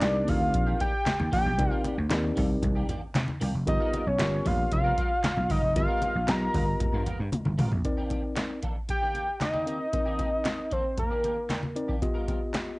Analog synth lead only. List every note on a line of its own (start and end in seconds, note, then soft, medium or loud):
0.00 0.30 D5 medium
0.29 0.80 F5 loud
0.81 1.29 G5 loud
1.33 1.81 G5 loud
3.68 4.09 D#5 loud
4.07 4.48 C#5 medium
4.47 4.72 F5 medium
4.73 5.52 F5 loud
5.51 5.76 D#5 loud
5.77 6.31 F5 loud
6.29 7.07 A#5 loud
8.90 9.38 G5 loud
9.42 10.74 D#5 loud
10.72 10.98 C5 medium
10.99 11.73 A#4 medium